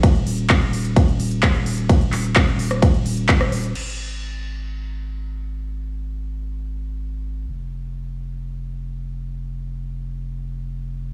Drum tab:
CC |----------------|----------------|x---------------|----------------|
RD |x---x---x---x---|x---x---x---x---|----------------|----------------|
HH |xxoxxxoxxxoxxxox|xxoxxxoxxxoxxxox|----------------|----------------|
CP |----x-------x---|--x-x-------x---|----------------|----------------|
SD |----------------|-------r-----r--|----------------|----------------|
BD |o---o---o---o---|o---o---o---o---|----------------|----------------|

CC |----------------|----------------|
RD |----------------|----------------|
HH |----------------|----------------|
CP |----------------|----------------|
SD |----------------|----------------|
BD |----------------|----------------|